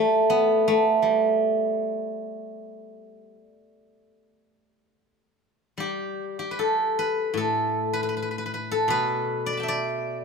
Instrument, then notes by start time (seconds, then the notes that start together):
guzheng
Already playing: A3
0.30 B3
0.68 A3
1.02 G3
5.78 G3 G4
6.39 G4
6.51 B4
6.59 A4
6.99 B4
7.34 A2 A4
7.93 B4
8.03 B4
8.09 B4
8.17 B4
8.22 B4
8.31 B4
8.38 B4
8.46 B4
8.54 B4
8.71 A4
8.88 B2 B4
9.46 D5
9.53 B5
9.57 G5 A5
9.63 E5
9.68 D5